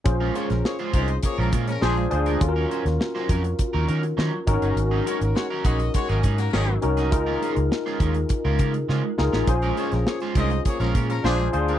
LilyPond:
<<
  \new Staff \with { instrumentName = "Horn section" } { \time 4/4 \key bes \minor \tempo 4 = 102 r8 <bes aes' des''>16 <f des' bes'>16 <bes aes' des''>16 r16 <ees' c'' ees''>8 <bes aes' des''>16 <f des' bes'>16 r16 <f des' bes'>16 <f d' aes'>8 r8 | r1 | r8 <aes ges' des''>16 <bes ges' bes'>16 <aes ges' des''>16 r16 <aes ges' ees''>8 <aes ges' des''>16 <bes ges' bes'>16 r16 <bes ges' bes'>16 <ees des' aes'>8 r8 | r1 |
r8 <bes aes' des''>16 <f des' bes'>16 <bes aes' des''>16 r16 <ees' c'' ees''>8 <bes aes' des''>16 <f des' bes'>16 r16 <f des' bes'>16 <f d' aes'>8 r8 | }
  \new Staff \with { instrumentName = "Tine electric piano" } { \time 4/4 \key bes \minor <des' f' aes' c''>4.~ <des' f' aes' c''>16 r4 r16 <d' f' aes' c''>8 <d' f' aes' c''>8 | <des' f' ges' a' bes'>4.~ <des' f' ges' a' bes'>16 r4. r16 <des' ees' ges' bes'>8~ | <des' ees' ges' bes'>4~ <des' ees' ges' bes'>16 r2 r16 <des' ees' ges' bes'>8 | <ees' f' aes' bes'>4.~ <ees' f' aes' bes'>16 r4. r16 <ees' f' aes' bes'>8 |
<des' f' aes' c''>4.~ <des' f' aes' c''>16 r4 r16 <d' f' aes' c''>8 <d' f' aes' c''>8 | }
  \new Staff \with { instrumentName = "Clean electric guitar" } { \time 4/4 \key bes \minor r16 <aes des' f' bes'>16 <aes des' f' c''>16 r8 <aes des' f' c''>16 <aes des' f' bes'>16 r8 <aes des' f' bes'>16 <aes des' f' bes'>16 r16 <aes d' f' c''>16 r8 <aes d' f' bes'>16 | r16 <ges des' ees' bes'>16 <ges des' ees' c''>16 r8 <ges des' ees' c''>16 <ges des' ees' bes'>16 r8 <ges des' ees' bes'>16 <ges des' ees' bes'>16 r16 <ges des' ees' c''>16 r8 <ges des' ees' aes'>16 | r16 <ges des' ees' aes'>16 <ges des' ees' bes'>16 r8 <ges des' ees' bes'>16 <ges des' ees' aes'>16 r8 <ges des' ees' aes'>16 <ges des' ees' aes'>16 r16 <ges des' ees' bes'>16 r8 <ges des' ees' aes'>16 | r16 <aes des' f' bes'>16 <aes des' f' c''>16 r8 <aes des' f' c''>16 <aes des' f' bes'>16 r8 <aes des' f' bes'>16 <aes des' f' bes'>16 r16 <aes des' f' c''>16 r8 <aes des' f' bes'>16 |
r16 <aes des' f' bes'>16 <aes des' f' c''>16 r8 <aes des' f' c''>16 <aes des' f' bes'>16 r8 <aes des' f' bes'>16 <aes des' f' bes'>16 r16 <aes d' f' c''>16 r8 <aes d' f' bes'>16 | }
  \new Staff \with { instrumentName = "Fingered electric bass" } { \clef bass \time 4/4 \key bes \minor bes,,8 r16 bes,,16 r8 c,8 r16 bes,,16 bes,8 bes,,8 d,8 | ees,8 r16 ees,16 r8 f,8 r16 ees,16 ees8 ees16 r16 aes,,16 g,,16 | aes,,8 r16 aes,,16 r8 bes,,8 r16 aes,,16 aes,8 aes,,8 c,8 | des,8 r16 des,16 r8 ees,8 r16 des,16 des8 des16 r16 des,16 a,,16 |
bes,,8 r16 bes,,16 r8 c,8 r16 bes,,16 bes,8 bes,,8 d,8 | }
  \new DrumStaff \with { instrumentName = "Drums" } \drummode { \time 4/4 <hh bd>8 hh16 <hh sn>16 sn16 hh16 <hh bd>16 hh16 <hh bd>8 <hh bd>16 <hh sn>16 sn16 hh16 hh16 hh16 | <hh bd>8 hh16 <hh sn>16 sn16 sn16 <hh bd>16 hh16 <hh bd>8 hh16 hh16 sn8 <hh bd>16 hh16 | hh8 hh16 hh16 sn8 <hh bd>16 hh16 <hh bd>16 hh16 <hh bd>16 <hh sn>16 sn8 hh16 <hh sn>16 | <hh bd>8 hh16 hh16 sn16 sn16 <hh bd>16 hh16 <hh bd>8 <hh bd>16 hh16 sn8 sn16 sn16 |
<hh bd>16 hh16 hh16 <hh sn>16 sn16 <hh sn>16 <hh bd>16 hh16 <hh bd>16 hh16 <hh bd>16 hh16 sn16 hh16 hh16 hh16 | }
>>